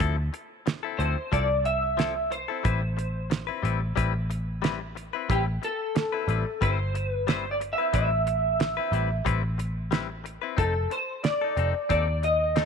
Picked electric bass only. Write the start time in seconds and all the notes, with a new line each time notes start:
0.00 D2
0.99 D2
1.33 C2
2.65 A1
3.63 A1
3.97 A1
5.30 A1
6.28 A1
6.62 G1
7.94 A1
8.92 A1
9.26 A1
10.58 F1
11.57 F1
11.90 D#2